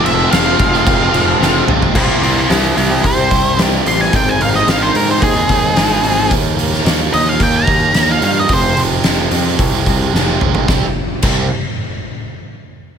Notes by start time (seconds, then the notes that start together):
Already playing: F2 F3 G#3 C4 F4
0.03 F1 C3 F3 G#3 C4 E5, crash
0.16 F3 G#3 C4 F4
0.22 G#3
0.30 F1 F2 C3 F3 G#3 C4 F5, snare, crash
0.35 F4
0.59 F1 F3 G#3 C4 F4, muted overdriven electric guitar stroke, kick, crash
0.71 F3 G#3 C4 F4, snare
0.76 G#3
0.84 F1 C3 F3 G#3 C4, kick, crash
0.98 F3 G#3 C4 F4
1.03 G#3
1.11 F1 C3 F3 G#3 C4, crash
1.16 C4 F4
1.26 F3 G#3 C4, muted overdriven electric guitar stroke
1.39 F1 F2 C3 F3 G#3 C4, snare
1.43 C4 F4
1.66 A#1 C3 F3 G#3 C4, mid tom
1.71 F4
1.79 F3 G#3 C4 F4, floor tom
1.84 G#3
1.95 C2 C3 E3 G3 C4 E4 G4 A#4 D5, kick, crash
2.21 C2 C3 E3 G3 C4 E4 G4 A#4 D5, open hi-hat
2.35 G3 C4 E4
2.48 C2 C3 E3 G3 C4 E4 G4 C5, snare, open hi-hat
2.62 G3 C4 G4
2.76 C2 C3 G3 C4 E4 C5, muted clean electric guitar stroke, open hi-hat
2.89 G3 C4 E4 G4
3.04 C2 C5, kick, open hi-hat
3.16 G3 C4 E4 G4
3.30 C2 C3 G3 C4 E4, kick, open hi-hat
3.43 G3 C4 E4
3.57 C2 C3 E3 G3 C4 E4 G4, snare, open hi-hat
3.70 G3 C4 E4 G4
3.84 A1 C3 E3 G3 C4 E4 G4 C6, open hi-hat
3.99 G3 C4 G4 G#5
4.12 G#1 G#2 D#3 G#3 C4 D#4 G#4, kick, open hi-hat
4.16 G5
4.29 G#5
4.40 G#1 D#3 G#3 C4 D#4 G#4 F5, open hi-hat
4.52 G#3 C4 D#4 D#5, snare
4.66 G#1 G#2 D#3 G#3 C4 D#4 G#4, snare, open hi-hat
4.70 F5
4.79 G#3 C4 D#4 G#4 C5
4.93 G#2 D#3 G#3 C4 D#4 A#4, muted clean electric guitar stroke, open hi-hat
5.06 G#3 C4 D#4 G#4
5.11 C5
5.22 D#2 G#4, kick, open hi-hat
5.33 G#3 C4 D#4 G#4
5.48 D#2 D#3 G#3 C4 D#4, kick, open hi-hat
5.61 G#3 C4 D#4
5.73 G#1 G#2 D#3 G#3 C4 D#4, snare, open hi-hat
5.78 G#4
5.88 G#3 C4 D#4 G#4
6.02 G#1 D#3 G#3 C4 D#4, open hi-hat
6.06 G#4
6.17 G#3 C4 D#4 G#4
6.29 D#2 D#3 G3 A#3 D#4, kick, open hi-hat
6.56 D#2 D#3 G3 A#3 D#4, open hi-hat
6.70 G3 A#3 D#4, snare
6.84 D#2 D#3 G3 A#3 D#4, snare, open hi-hat
7.12 D#2 D#3 G3 A#3 D#4 D#5, open hi-hat
7.25 G3 A#3 D#4 F5
7.40 D#2 G5, kick, open hi-hat
7.52 G3 A#3 D#4
7.56 A#5
7.66 D#2 D#3 G3 A#3 D#4, kick, open hi-hat
7.80 G3 A#3 D#4
7.93 D#2 D#3 G3 A#3 D#4, snare, open hi-hat
8.07 G3 A#3 D#4
8.12 F5
8.21 G2 D#3 G3 A#3 D#4 F5, open hi-hat
8.39 D#5
8.49 F1 F2 C3 F3 G#3 C4, kick, open hi-hat
8.53 C5
8.76 F1 C3 F3 G#3 C4, open hi-hat
8.90 F3 G#3 C4
9.03 F1 F2 C3 F3 G#3 C4, snare, open hi-hat
9.31 F2 C3 F3 G#3 C4, open hi-hat
9.45 F3 G#3 C4
9.59 C2, kick, open hi-hat
9.72 F3 G#3 C4
9.86 C2 C3 F3 G#3 C4, kick, open hi-hat
10.00 F3 G#3 C4
10.13 F1 F2 C3 F3 G#3 C4, snare
10.27 F3 G#3 C4
10.40 F1 C3 F3 G#3 C4, mid tom
10.55 floor tom
10.67 C2 C3 G3 C4, kick, snare
11.22 C2 C3 G3 C4, kick, crash